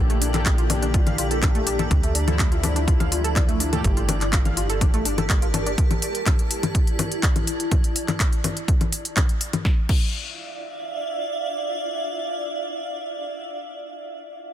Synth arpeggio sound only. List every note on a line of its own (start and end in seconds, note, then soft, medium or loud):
0.10 0.21 A3 loud
0.21 0.33 D4 medium
0.34 0.43 A4 medium
0.46 0.55 A3 medium
0.58 0.63 F4 medium
0.70 0.79 D4 medium
0.82 0.88 D4 medium
0.94 1.00 F4 medium
1.07 1.15 F5 medium
1.18 1.28 F4 medium
1.31 1.39 A4 medium
1.43 1.52 D4 medium
1.55 1.66 A3 loud
1.67 1.79 D4 medium
1.79 1.88 A4 medium
1.91 2.00 D4 medium
2.03 2.14 A3 loud
2.15 2.27 D4 medium
2.28 2.36 A4 medium
2.39 2.48 A3 medium
2.52 2.57 F4 medium
2.63 2.73 D4 medium
2.76 2.81 D4 medium
2.88 2.93 F4 medium
3.00 3.09 F5 medium
3.12 3.21 F4 medium
3.24 3.33 A4 medium
3.36 3.45 D4 medium
3.48 3.60 A3 loud
3.60 3.72 D4 medium
3.73 3.81 A4 medium
3.84 3.94 A3 medium
3.97 4.02 F4 medium
4.09 4.18 D4 medium
4.21 4.26 D4 medium
4.33 4.38 F4 medium
4.45 4.54 F5 medium
4.57 4.66 F4 medium
4.70 4.78 A4 medium
4.81 4.90 D4 medium
4.94 5.05 A3 loud
5.05 5.17 D4 medium
5.18 5.27 A4 medium
5.30 5.39 A3 medium
5.42 5.47 F4 medium
5.54 5.63 D4 medium
5.66 5.71 D4 medium